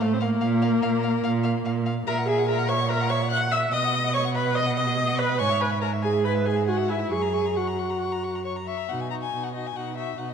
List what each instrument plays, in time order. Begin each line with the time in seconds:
0.00 cello A2, viola A3, violin A4 F5
0.13 viola C4, violin C5
0.21 viola A#3, violin A#4 F5
0.41 cello A#2, violin F5
0.62 violin F5
0.82 cello A#2, violin F5
1.03 violin F5
1.24 cello A#2, violin F5
1.43 violin F5
1.65 cello A#2, violin F5
1.86 violin F5
2.07 cello A#2, viola A#4, violin E5 A#5
2.18 violin F#5
2.27 viola G#4, violin E5 G#5
2.38 violin F#5
2.48 viola A#4, violin E5 A#5
2.58 violin F#5
2.68 viola C#5, violin E5 C#6
2.80 violin F#5
2.89 viola A#4, violin E5 A#5
3.00 violin F#5
3.09 viola C#5, violin E5 C#6
3.22 violin F#5
3.30 violin E5 F#6, viola F#5
3.41 violin F#5
3.51 viola E5, violin E5 E6
3.62 violin F#5
3.72 cello B2, viola D#5, violin D#5 D#6
3.84 violin F#5
3.94 violin D#5
4.04 violin F#5
4.13 viola C#5, violin D#5 C#6
4.24 violin F#5
4.34 viola B4, violin D#5 B5
4.45 violin F#5
4.55 viola D#5, violin D#5 D#6
4.66 violin F#5
4.76 viola D#5, violin D#5 D#6
4.87 violin F#5
4.97 violin D#5
5.07 violin F#5
5.18 viola B4, violin D#5 B5
5.29 violin F#5
5.39 cello G#2, viola C#5, violin G#5 C#6
5.50 violin E5
5.60 viola B4, violin G#5 B5
5.71 violin E5
5.81 viola A#4, violin G#5 A#5
5.93 violin E5
6.02 viola G#4, violin G#5
6.13 violin E5
6.24 viola B4, violin G#5 B5
6.35 violin E5
6.45 viola G#4, violin G#5
6.56 violin E5
6.66 viola F#4, violin F#5 G#5
6.77 violin E5
6.89 viola E4, violin E5 G#5
7.00 violin E5
7.11 cello F#2, viola G#4, violin G#5 C#6
7.22 violin A#5
7.34 violin C#6
7.46 violin A#5
7.57 viola F#4, violin F#5 C#6
7.67 violin A#5
7.79 violin C#6
7.90 violin A#5
8.01 violin C#6
8.12 violin A#5
8.24 violin C#6
8.35 violin A#5
8.44 violin C#5 C#6
8.56 violin A#5
8.66 violin E5 C#6
8.78 violin A#5
8.89 cello B2, viola D#4, violin F#4 F#5
9.00 violin G#5
9.10 viola D#4, violin F#4 A#5
9.22 violin G#5
9.32 cello B2, viola D#4, violin F#4
9.44 violin F#5
9.54 viola D#4, violin F#4 D#5
9.67 violin G#5
9.75 cello B2, viola D#4, violin F#4 F#5
9.96 viola D#4, violin F#4 E5
10.17 cello B2, viola D#4, violin F#4 F#5
10.30 violin D#5